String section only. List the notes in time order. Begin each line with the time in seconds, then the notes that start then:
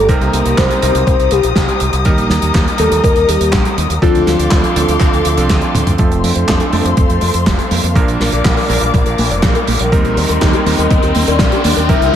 Already playing: G4 A#5
0.09 C5 D#6
2.05 D#5 A#5
4.02 A4 F5 C6 D6
5.99 A4 C5 F5 C6
7.96 A#4 D5 D6
9.93 D#4 G5 C6
11.89 E5